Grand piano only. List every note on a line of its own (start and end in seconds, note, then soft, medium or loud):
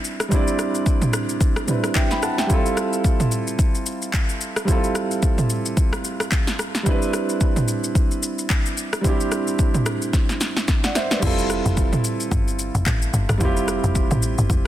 0.00 0.26 G3 medium
0.00 0.27 C4 medium
0.00 0.28 D4 medium
0.00 0.32 E4 medium
0.00 0.30 B4 medium
0.29 1.64 G3 medium
0.29 1.65 C4 medium
0.29 1.66 D4 medium
0.34 1.66 E4 medium
0.34 1.67 D5 medium
1.67 2.45 G3 medium
1.67 2.47 C4 medium
1.67 2.50 D4 medium
1.67 2.49 E4 medium
1.67 2.51 B4 medium
1.96 2.11 E5 medium
1.96 2.11 G5 medium
2.12 2.23 G5 medium
2.12 2.22 B5 medium
2.23 2.38 F#5 medium
2.23 2.38 A5 medium
2.39 2.65 E5 medium
2.39 2.65 G5 medium
2.47 4.62 G3 medium
2.47 4.63 C4 medium
2.47 4.64 E4 medium
2.52 4.65 F4 medium
2.52 4.66 A4 medium
4.65 6.81 G3 medium
4.65 6.82 C4 medium
4.65 6.82 E4 medium
4.70 6.83 F4 medium
4.70 6.84 A4 medium
6.83 8.99 G3 medium
6.83 9.00 C4 medium
6.83 9.01 D4 medium
6.88 9.02 E4 medium
6.88 9.02 B4 medium
9.01 10.90 G3 medium
9.01 10.91 C4 medium
9.01 10.92 D4 medium
9.07 10.93 E4 medium
9.07 10.94 G4 medium
10.84 10.95 D5 medium
10.84 10.95 F#5 medium
10.96 11.11 C5 medium
10.96 11.11 E5 medium
11.12 11.38 B4 medium
11.12 11.37 D5 medium
11.19 13.35 G3 medium
11.19 13.36 C4 medium
11.19 13.37 E4 medium
11.25 13.38 F4 medium
11.25 13.39 A4 medium
13.38 14.67 G3 medium
13.38 14.67 C4 medium
13.38 14.67 E4 medium
13.43 14.67 F4 medium
13.43 14.67 G4 medium